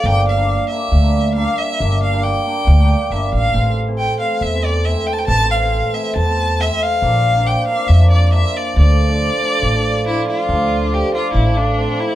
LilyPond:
<<
  \new Staff \with { instrumentName = "Violin" } { \time 4/4 \key d \minor \tempo 4 = 138 g''8 f''4 e''4. f''8 e''8~ | e''8 f''8 g''2 e''8 f''8~ | f''8 r8 g''8 f''8 e''8 d''8 e''8 g''32 a''32 g''16 | a''8 f''4 e''8 a''4 e''8 f''8~ |
f''4 g''8 f''8 e''8 d''8 e''8 d''8 | d''2. e'8 f'8~ | f'4 g'8 f'8 e'8 d'4 e'8 | }
  \new Staff \with { instrumentName = "Hammered dulcimer" } { \time 4/4 \key d \minor <g bes d'>8 r16 <g bes d'>16 r8 <g bes d'>8 r16 <g bes d'>16 r8 <g bes d'>8 r8 | <g bes d'>8 r16 <g bes d'>16 r8 <g bes d'>8 r16 <g bes d'>16 r8 <g bes d'>8 r8 | <e a c'>8 r16 <e a c'>16 r8 <e a c'>8 r16 <e a c'>16 r8 <e a c'>8 r8 | <e a c'>8 r16 <e a c'>16 r8 <e a c'>8 r16 <e a c'>16 r8 <e a c'>8 r8 |
<f bes d'>8 r16 <f bes d'>16 r8 <f bes d'>8 r16 <f bes d'>16 r8 <f bes d'>8 r8 | <f a d'>8 r16 <f a d'>16 r8 <f a d'>8 r16 <f a d'>16 r8 <f a d'>8 r8 | <f a d'>8 r16 <f a d'>16 r8 <f a d'>8 r16 <f a d'>16 r8 <f a c'>8 r8 | }
  \new Staff \with { instrumentName = "Upright bass" } { \clef bass \time 4/4 \key d \minor g,,2 d,2 | g,,2 d,4 g,,8 a,,8 | a,,2 e,2 | a,,2 e,2 |
bes,,2 f,2 | d,2 a,,2 | d,2 a,,2 | }
>>